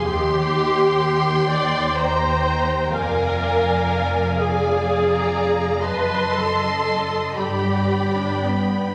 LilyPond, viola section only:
\new Staff \with { instrumentName = "Viola section" } { \time 6/8 \key c \minor \tempo 4. = 41 g'4. d''8 c''4 | bes'4. aes'4. | b'8 a'4 g'8. d'16 b8 | }